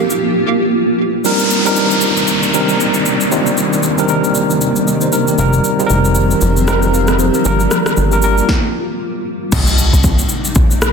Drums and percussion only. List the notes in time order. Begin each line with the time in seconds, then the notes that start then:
0.10 shaker
1.25 shaker
1.39 shaker
1.51 shaker
1.66 shaker
1.76 shaker
1.91 shaker
2.01 shaker
2.17 shaker
2.27 shaker
2.43 shaker
2.54 shaker
2.69 shaker
2.80 shaker
2.94 shaker
3.06 shaker
3.21 shaker
3.32 shaker
3.46 shaker
3.58 shaker
3.73 shaker
3.83 shaker
3.98 shaker
4.09 shaker
4.24 shaker
4.35 shaker
4.50 shaker
4.61 shaker
4.76 shaker
4.88 shaker
5.01 shaker
5.13 shaker
5.28 shaker
5.38 shaker
5.53 shaker
5.64 shaker
5.80 shaker
5.90 shaker
6.05 shaker
6.15 shaker
6.31 shaker
6.41 shaker
6.57 shaker
6.68 cross-stick, shaker
6.82 shaker
6.94 shaker
7.08 cross-stick, shaker
7.19 shaker
7.34 shaker
7.45 shaker
7.60 shaker
7.71 cross-stick, shaker
7.86 cross-stick, shaker
7.97 shaker
8.12 shaker
8.22 shaker
8.38 shaker
8.49 kick, snare
9.52 kick, crash, shaker
9.67 shaker
9.78 shaker
9.94 shaker
10.04 kick, shaker
10.19 shaker
10.29 shaker
10.45 shaker
10.55 kick, shaker
10.71 shaker
10.82 cross-stick, shaker